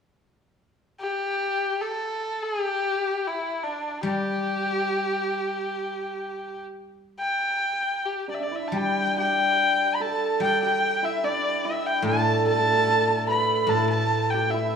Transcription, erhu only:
1.00 1.83 G4 medium
1.81 2.44 A4 medium
2.42 2.61 G#4 medium
2.61 3.28 G4 medium
3.27 3.65 E4 medium
3.63 4.03 D4 medium
4.04 6.63 G4 medium
7.19 8.07 G5 medium
8.06 8.28 G4 medium
8.30 8.36 D5 medium
8.30 8.44 E5 soft
8.43 8.57 D5 medium
8.55 8.69 E5 medium
8.68 8.79 A5 soft
8.77 9.18 G5 medium
9.18 9.96 G5 medium
9.95 10.03 B5 medium
10.01 10.42 A5 medium
10.42 10.61 G5 medium
10.63 11.06 G5 medium
11.05 11.26 E5 medium
11.24 11.66 D5 medium
11.65 11.88 E5 medium
11.86 12.05 G5 medium
12.05 12.43 A5 medium
12.47 13.25 A5 loud
13.29 13.71 B5 medium
13.69 13.89 A5 medium
13.89 14.32 A5 medium
14.30 14.52 G5 medium
14.50 14.76 E5 medium

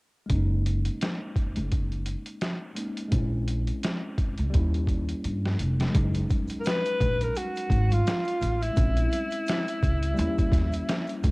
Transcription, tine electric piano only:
0.26 2.71 G#3 medium
0.26 2.72 A#3 medium
0.31 2.74 C#4 soft
0.31 2.75 D#4 medium
2.75 3.07 G#3 soft
2.75 3.12 A#3 soft
2.75 3.12 C#4 soft
2.75 3.13 D#4 medium
3.08 4.49 G#3 medium
3.08 4.50 C4 medium
3.13 4.51 C#4 medium
3.13 4.52 E4 medium
4.50 5.90 G3 medium
4.50 5.91 A#3 medium
4.55 5.92 C#4 medium
4.55 5.94 E4 medium
5.90 8.72 F#3 medium
5.90 8.71 G#3 medium
5.96 8.73 C#4 medium
5.96 8.74 D#4 medium
8.73 10.13 G#3 medium
8.73 10.15 C4 medium
8.78 10.16 C#4 medium
8.78 10.17 E4 medium
10.14 11.31 G3 medium
10.14 11.31 A#3 medium
10.19 11.31 C#4 medium
10.19 11.31 E4 medium

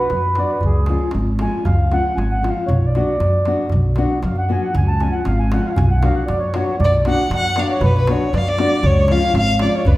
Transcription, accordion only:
0.00 0.39 B4 loud
0.38 0.51 D5 medium
0.51 0.64 B4 medium
0.65 1.12 G#4 medium
1.42 1.65 G#5 medium
1.66 1.93 F5 medium
1.93 2.19 F#5 loud
2.16 2.33 G#5 medium
2.32 2.49 F#5 medium
2.50 2.69 F5 medium
2.67 2.86 C#5 medium
2.86 3.59 D5 medium
4.25 4.36 F5 medium
4.38 4.50 F#5 medium
4.52 4.64 G#5 loud
4.63 4.74 F#5 medium
4.77 4.89 G#5 loud
4.88 5.01 A5 medium
5.01 5.14 G#5 loud
5.12 5.26 F#5 medium
5.27 5.39 F5 medium
5.39 5.52 G#5 loud
5.53 5.66 F#5 medium
5.66 5.69 F5 medium
5.66 5.71 F#5 medium
5.72 5.78 F5 medium
5.77 5.89 G#5 medium
5.91 6.04 F#5 medium
6.01 6.14 F5 medium
6.15 6.29 F#5 medium
6.26 6.40 D5 medium
6.39 6.76 C#5 medium
6.80 6.91 D5 loud
7.07 7.30 F#5 medium
7.34 7.57 F#5 medium
7.57 7.60 D5 medium
7.57 7.62 F5 medium
7.62 7.69 D5 medium
7.69 7.82 C#5 medium
7.80 7.94 B4 loud
7.97 8.08 B4 medium
8.08 8.33 C#5 medium
8.33 8.40 D5 medium
8.41 8.48 F5 medium
8.51 8.86 D5 medium
8.86 9.11 C#5 medium
9.13 9.33 F5 medium
9.35 9.59 F5 medium
9.62 9.74 D5 medium
9.74 9.87 C#5 medium
9.86 9.97 B4 medium

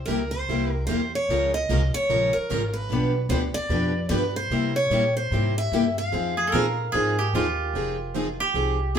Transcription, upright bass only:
0.08 0.47 C#2 medium
0.49 0.88 C2 medium
0.89 1.28 E2 medium
1.29 1.68 C#2 medium
1.69 1.93 C2 medium
2.09 2.33 A#1 medium
2.36 muted upright bass stroke soft
2.51 2.89 G#1 medium
2.90 3.29 B1 medium
3.29 3.53 D2 medium
3.55 muted upright bass stroke soft
3.69 4.09 F2 medium
4.10 4.50 G2 loud
4.50 4.90 C3 medium
4.90 5.30 A#2 medium
5.31 5.71 G#2 medium
5.72 6.11 G2 loud
6.13 6.52 F2 medium
6.53 6.92 A#2 medium
6.94 7.33 G#2 medium
7.33 7.73 D#2 loud
7.74 8.38 F1 medium
8.54 8.99 C2 medium

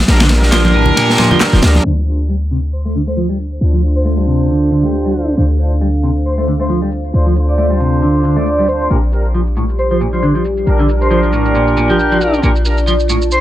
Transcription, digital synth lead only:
2.73 2.81 C5 medium
2.85 2.91 C5 medium
3.07 3.19 C5 medium
3.96 4.02 C5 medium
4.05 4.13 C5 medium
4.83 5.28 G4 medium
6.25 6.34 C5 medium
6.38 6.44 C5 medium
6.60 6.72 C5 medium
7.48 7.54 D5 medium
7.58 7.66 D5 medium
8.36 8.66 D5 medium
8.68 8.76 C5 medium
8.81 8.87 C5 medium
9.78 9.86 C5 medium
9.91 9.97 C5 medium
10.13 10.25 C5 medium
11.01 11.07 C5 medium
11.11 11.19 C5 medium
11.89 12.34 G4 medium
13.32 13.40 C5 medium

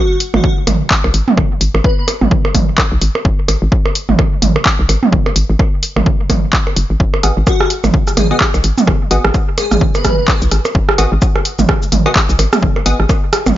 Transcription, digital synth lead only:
0.00 0.17 F#4 medium
0.34 0.53 F#4 medium
1.84 1.93 B4 medium
1.98 2.04 B4 medium
7.47 7.67 F#4 medium
8.17 8.26 G#4 medium
8.31 8.37 G#4 medium
9.58 9.67 G#4 medium
9.72 9.78 G#4 medium
9.95 10.42 B4 loud

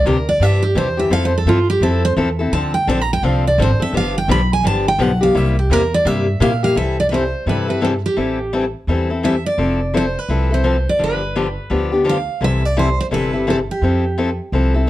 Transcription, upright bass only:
0.05 0.39 D2 medium
0.40 0.74 G2 medium
0.75 1.10 E2 medium
1.10 1.45 F2 medium
1.46 1.80 G2 medium
1.81 2.15 F2 medium
2.17 2.51 E2 medium
2.52 2.86 D2 medium
2.87 3.22 A#1 medium
3.23 3.57 C2 medium
3.58 3.78 G#1 loud
3.80 muted upright bass stroke soft
3.93 4.27 G1 medium
4.28 4.62 B1 medium
4.63 4.98 G1 medium
4.98 5.33 B1 loud
5.35 5.69 C2 medium
5.70 6.04 E2 loud
6.05 6.39 G2 medium
6.40 6.75 A#2 loud
6.76 7.32 C2 medium
7.46 8.03 G2 medium
8.17 8.73 A1 medium
8.87 9.44 E2 medium
9.58 10.14 F1 medium
10.29 10.85 C2 medium
11.00 11.56 G1 medium
11.70 12.27 D2 medium
12.41 12.97 C2 medium
13.11 13.68 G1 medium
13.82 14.38 F2 medium
14.52 14.90 C2 medium

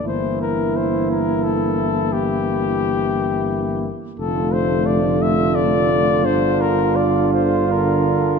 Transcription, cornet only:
0.08 0.40 C5 medium
0.42 0.78 A#4 medium
0.77 1.10 C5 medium
1.11 1.45 A#4 medium
1.44 2.14 A4 medium
2.12 3.92 G4 medium
4.19 4.55 A4 medium
4.53 4.88 C5 medium
4.86 5.24 D5 medium
5.22 5.57 E5 medium
5.55 6.27 D5 medium
6.25 6.63 C5 medium
6.61 6.97 A#4 medium
6.96 7.32 D5 medium
7.33 7.73 C5 medium
7.72 8.39 A#4 medium

